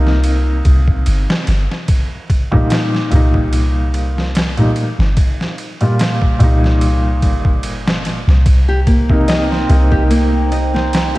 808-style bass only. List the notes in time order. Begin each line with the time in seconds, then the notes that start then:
Already playing: C2
0.65 C2
1.07 G1
1.48 G1
3.13 C2
4.99 G1
6.41 C2
7.23 G1
8.28 C2
9.70 C2